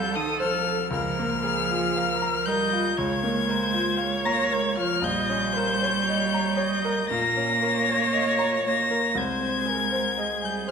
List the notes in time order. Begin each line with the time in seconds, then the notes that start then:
Already playing: C2 G3 C4 A4 C5 F5 G6
0.13 D#3 A5 D#6
0.40 F3 C5 F6
0.65 A4
0.91 C#2 F3 A#4 F6
1.19 A#3
1.44 G#4 A#4
1.71 F4
1.96 A#4 F5
2.22 A#5
2.46 G3 A#4 D#5 G6
2.73 F4
2.97 C#2 G#3 C#5 G#6
3.23 A#3
3.49 A#4 C5
3.74 F4
3.97 C#5 F5
4.25 A#3 A#5 A#6
4.51 G#3 A#4 G#6
4.77 F3 F4 F6
5.01 A#1 G3 D#5 G6
5.29 C#4
5.53 A#4 C5
5.83 C#5
6.05 C#5 D#5
6.34 A#5
6.57 C#5 D#5
6.85 A#4
7.09 A#2 A#3 A#4 A#6
7.37 C#4
7.61 A#4 C#5
7.89 C#5
8.13 D#5
8.39 A#5
8.64 A#3 C#5 A#6
8.91 A#4
9.15 C2 G#3 C5 G#6
9.41 C4
9.66 G#4 A#4
9.92 C5
10.18 G#4 D#5
10.42 G3 G#5 G6
10.67 C5